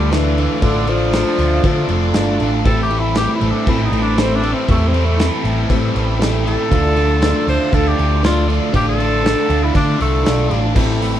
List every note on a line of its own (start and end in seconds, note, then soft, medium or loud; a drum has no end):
0.00 0.46 D2 loud
0.00 0.10 D3 medium
0.00 2.61 D3 medium
0.00 0.15 G3 loud
0.00 0.11 A3 medium
0.00 2.61 A3 medium
0.00 0.10 D4 medium
0.00 2.61 D4 medium
0.00 0.11 F4 loud
0.10 0.36 D3 medium
0.10 0.64 E3 loud
0.10 0.37 A3 loud
0.10 0.51 D4 medium
0.10 0.38 D4 medium
0.10 0.51 E4 medium
0.10 0.38 F4 medium
0.10 0.52 A4 medium
0.10 snare loud
0.10 crash medium
0.38 0.61 D3 medium
0.38 0.63 A3 medium
0.38 0.63 D4 medium
0.38 0.64 F4 loud
0.38 crash medium
0.62 1.22 A1 loud
0.62 0.91 D3 loud
0.62 0.87 D3 loud
0.62 0.88 A3 loud
0.62 1.03 D4 medium
0.62 0.88 D4 loud
0.62 1.02 E4 medium
0.62 1.02 F4 medium
0.62 0.88 F4 loud
0.62 1.02 A4 loud
0.62 kick loud
0.62 crash medium
0.87 1.12 D3 medium
0.87 2.37 F3 loud
0.87 1.13 A3 medium
0.87 1.13 D4 loud
0.87 1.13 F4 loud
0.87 crash medium
1.13 1.37 D3 medium
1.13 1.39 A3 medium
1.13 1.38 D4 medium
1.13 1.54 D4 medium
1.13 1.54 E4 medium
1.13 1.39 F4 medium
1.13 1.54 F4 medium
1.13 1.54 A4 medium
1.13 snare loud
1.13 crash medium
1.38 1.58 D2 medium
1.38 1.62 D3 medium
1.38 1.64 A3 loud
1.38 1.63 D4 medium
1.38 1.64 F4 medium
1.38 crash medium
1.63 1.83 D3 loud
1.63 1.88 D3 loud
1.63 1.90 A3 loud
1.63 1.89 D4 loud
1.63 2.05 D4 loud
1.63 2.04 E4 medium
1.63 2.04 F4 medium
1.63 1.90 F4 loud
1.63 2.05 A4 loud
1.63 kick loud
1.63 crash medium
1.88 2.11 F1 medium
1.88 2.13 D3 medium
1.88 2.15 A3 medium
1.88 2.14 D4 medium
1.88 2.14 F4 loud
1.88 crash medium
2.14 2.37 G1 medium
2.14 2.38 D3 medium
2.14 2.40 A3 medium
2.14 2.39 D4 medium
2.14 2.56 D4 medium
2.14 2.55 E4 medium
2.14 2.55 F4 medium
2.14 2.40 F4 loud
2.14 2.55 A4 loud
2.14 snare loud
2.14 crash medium
2.40 2.63 A1 medium
2.40 2.63 D3 medium
2.40 2.65 A3 medium
2.40 2.64 D4 medium
2.40 2.64 F4 medium
2.40 crash medium
2.64 3.26 A1 medium
2.64 2.90 A2 loud
2.64 2.90 E3 loud
2.64 6.67 G3 medium
2.64 6.66 A3 medium
2.64 2.91 A3 loud
2.64 6.66 C4 medium
2.64 3.06 C4 medium
2.64 2.91 C4 loud
2.64 6.66 E4 medium
2.64 3.06 E4 medium
2.64 2.92 E4 loud
2.64 3.06 G4 medium
2.64 2.82 A4 loud
2.64 3.06 A4 loud
2.64 kick loud
2.64 crash medium
2.83 3.01 G4 loud
2.90 3.15 A2 medium
2.90 3.16 E3 medium
2.90 3.16 A3 medium
2.90 3.17 C4 loud
2.90 3.17 E4 loud
2.90 crash medium
3.00 3.16 E4 loud
3.15 3.40 A2 medium
3.15 3.40 E3 medium
3.15 3.41 A3 medium
3.15 3.56 C4 medium
3.15 3.41 C4 medium
3.15 3.57 E4 medium
3.15 3.41 E4 medium
3.15 3.56 G4 medium
3.15 3.33 G4 loud
3.15 3.56 A4 medium
3.15 snare loud
3.15 crash medium
3.35 3.52 E4 medium
3.40 3.51 A1 medium
3.40 3.65 A2 medium
3.40 3.67 E3 medium
3.40 3.67 A3 medium
3.40 3.67 C4 medium
3.40 3.68 E4 medium
3.40 crash medium
3.51 3.67 D4 medium
3.66 3.87 A1 loud
3.66 3.91 A2 loud
3.66 3.92 E3 loud
3.66 3.93 A3 loud
3.66 4.07 C4 medium
3.66 3.92 C4 loud
3.66 4.07 E4 medium
3.66 3.93 E4 loud
3.66 3.87 E4 loud
3.66 4.08 G4 medium
3.66 4.07 A4 medium
3.66 kick loud
3.66 crash medium
3.86 4.01 D#4 medium
3.92 4.52 A1 loud
3.92 4.16 A2 medium
3.92 4.17 E3 medium
3.92 4.18 A3 medium
3.92 4.17 C4 loud
3.92 4.18 E4 loud
3.92 crash medium
4.02 4.22 D4 loud
4.17 4.41 A2 medium
4.17 4.43 E3 loud
4.17 4.43 A3 medium
4.17 4.58 C4 medium
4.17 4.43 C4 medium
4.17 4.37 C4 loud
4.17 4.58 E4 medium
4.17 4.44 E4 medium
4.17 4.58 G4 medium
4.17 4.58 A4 medium
4.17 snare loud
4.17 crash medium
4.36 4.55 D4 loud
4.43 4.66 A2 medium
4.43 4.68 E3 medium
4.43 4.69 A3 loud
4.43 4.69 C4 medium
4.43 4.70 E4 loud
4.43 crash medium
4.54 4.69 C4 medium
4.68 5.28 E2 loud
4.68 4.91 A2 medium
4.68 4.92 E3 loud
4.68 4.93 A3 loud
4.68 4.89 A3 loud
4.68 5.09 C4 medium
4.68 4.92 C4 loud
4.68 5.09 E4 medium
4.68 4.93 E4 loud
4.68 5.09 G4 medium
4.68 5.09 A4 loud
4.68 kick loud
4.68 crash medium
4.88 5.07 C4 medium
4.92 5.16 A2 loud
4.92 5.18 E3 medium
4.92 5.18 A3 medium
4.92 5.18 C4 medium
4.92 5.19 E4 medium
4.92 crash medium
5.05 5.28 A3 loud
5.18 5.43 A2 medium
5.18 5.45 E3 medium
5.18 5.45 A3 loud
5.18 5.44 C4 medium
5.18 5.60 C4 medium
5.18 5.46 E4 loud
5.18 5.60 E4 medium
5.18 5.60 G4 medium
5.18 5.60 A4 medium
5.18 snare loud
5.18 crash medium
5.44 5.64 A1 loud
5.44 5.68 A2 medium
5.44 5.69 E3 medium
5.44 5.70 A3 medium
5.44 5.70 C4 medium
5.44 5.71 E4 loud
5.44 crash medium
5.69 5.94 A2 loud
5.69 5.90 A2 loud
5.69 5.95 E3 loud
5.69 5.96 A3 loud
5.69 6.10 C4 medium
5.69 5.95 C4 loud
5.69 6.10 E4 medium
5.69 5.96 E4 loud
5.69 6.10 G4 medium
5.69 6.10 A4 loud
5.69 kick loud
5.69 crash medium
5.95 6.55 A1 loud
5.95 6.18 A2 medium
5.95 6.20 E3 medium
5.95 6.20 A3 medium
5.95 6.20 C4 loud
5.95 6.21 E4 medium
5.95 crash medium
6.19 6.43 A2 medium
6.19 6.45 E3 medium
6.19 6.45 A3 medium
6.19 6.60 C4 medium
6.19 6.45 C4 medium
6.19 6.60 E4 medium
6.19 6.46 E4 medium
6.19 6.60 G4 medium
6.19 6.60 A4 medium
6.19 snare loud
6.19 crash medium
6.45 6.69 A2 medium
6.45 6.69 E3 medium
6.45 6.70 A3 medium
6.45 6.70 C4 medium
6.45 6.71 E4 medium
6.45 7.45 A4 loud
6.45 crash medium
6.70 7.32 D2 loud
6.70 6.94 D3 loud
6.70 10.72 F3 medium
6.70 6.95 A3 loud
6.70 10.71 A3 medium
6.70 6.95 D4 loud
6.70 10.71 D4 medium
6.70 7.12 D4 medium
6.70 7.12 E4 medium
6.70 6.95 F4 loud
6.70 7.11 F4 medium
6.70 7.12 A4 loud
6.70 kick loud
6.70 crash medium
6.95 7.20 D3 medium
6.95 7.21 A3 medium
6.95 7.21 D4 loud
6.95 7.21 F4 medium
6.95 crash medium
7.20 7.46 D3 medium
7.20 7.46 A3 medium
7.20 7.46 D4 medium
7.20 7.62 D4 medium
7.20 7.63 E4 medium
7.20 7.48 F4 loud
7.20 7.63 F4 medium
7.20 7.63 A4 medium
7.20 snare loud
7.20 crash medium
7.46 7.57 D2 medium
7.46 7.71 D3 medium
7.46 7.72 A3 medium
7.46 7.72 D4 loud
7.46 7.72 F4 medium
7.46 7.75 C5 medium
7.46 crash medium
7.72 7.93 D2 loud
7.72 7.96 D3 loud
7.72 7.97 A3 loud
7.72 8.12 D4 medium
7.72 7.97 D4 loud
7.72 8.12 E4 medium
7.72 8.12 F4 medium
7.72 7.98 F4 loud
7.72 8.12 A4 medium
7.72 7.90 A4 loud
7.72 kick loud
7.72 crash medium
7.88 8.23 G4 medium
7.97 8.58 D2 loud
7.97 8.21 D3 medium
7.97 8.23 A3 loud
7.97 8.22 D4 medium
7.97 8.23 F4 loud
7.97 crash medium
8.22 8.47 D3 medium
8.22 8.48 A3 medium
8.22 8.63 D4 medium
8.22 8.47 D4 loud
8.22 8.63 E4 medium
8.22 8.63 F4 medium
8.22 8.48 F4 medium
8.22 8.48 F4 loud
8.22 8.63 A4 medium
8.22 snare loud
8.22 crash medium
8.48 8.71 D3 medium
8.48 8.71 A3 medium
8.48 8.72 D4 medium
8.48 8.72 F4 medium
8.48 crash medium
8.72 9.33 A1 medium
8.72 8.96 D3 loud
8.72 8.98 A3 loud
8.72 9.13 D4 medium
8.72 8.98 D4 loud
8.72 9.13 E4 medium
8.72 9.13 F4 medium
8.72 8.98 F4 loud
8.72 8.86 G4 loud
8.72 9.13 A4 medium
8.72 kick loud
8.72 crash medium
8.88 9.65 A4 loud
8.97 9.22 D3 medium
8.97 9.22 A3 medium
8.97 9.22 D4 medium
8.97 9.23 F4 loud
8.97 crash medium
9.22 9.46 D3 medium
9.22 9.47 A3 medium
9.22 9.64 D4 medium
9.22 9.47 D4 medium
9.22 9.63 E4 medium
9.22 9.64 F4 medium
9.22 9.48 F4 medium
9.22 9.64 A4 medium
9.22 snare loud
9.22 crash medium
9.47 9.69 D2 medium
9.47 9.71 D3 medium
9.47 9.72 A3 medium
9.47 9.72 D4 loud
9.47 9.73 F4 loud
9.47 crash medium
9.64 9.75 E4 loud
9.72 9.98 D3 loud
9.72 9.95 D3 loud
9.72 9.98 A3 loud
9.72 9.99 D4 loud
9.72 10.15 D4 medium
9.72 10.00 D4 loud
9.72 10.15 E4 medium
9.72 9.99 F4 loud
9.72 10.15 F4 medium
9.72 10.15 A4 medium
9.72 kick loud
9.72 crash medium
9.99 10.23 C2 medium
9.99 10.22 D3 medium
9.99 10.22 A3 loud
9.99 10.74 A3 loud
9.99 10.23 D4 loud
9.99 10.23 F4 medium
9.99 crash medium
10.23 10.49 B1 medium
10.23 10.46 D3 medium
10.23 10.48 A3 medium
10.23 10.65 D4 medium
10.23 10.48 D4 medium
10.23 10.65 E4 medium
10.23 10.65 F4 medium
10.23 10.48 F4 medium
10.23 10.65 A4 medium
10.23 snare loud
10.23 crash loud
10.48 10.73 A1 medium
10.48 10.72 D3 medium
10.48 10.73 A3 medium
10.48 10.73 D4 medium
10.48 10.73 F4 medium
10.48 crash medium
10.74 11.20 A1 medium
10.74 10.98 A2 loud
10.74 10.99 E3 loud
10.74 11.20 G3 medium
10.74 11.00 A3 loud
10.74 11.20 A3 medium
10.74 11.20 C4 medium
10.74 11.15 C4 loud
10.74 11.00 C4 loud
10.74 11.16 E4 loud
10.74 11.00 E4 loud
10.74 11.20 E4 medium
10.74 11.16 G4 loud
10.74 11.15 A4 loud
10.74 kick loud
10.74 crash loud
10.99 11.20 A2 medium
10.99 11.20 E3 medium
10.99 11.20 A3 loud
10.99 11.20 C4 loud
10.99 11.20 E4 medium
10.99 open hi-hat medium
11.03 snare soft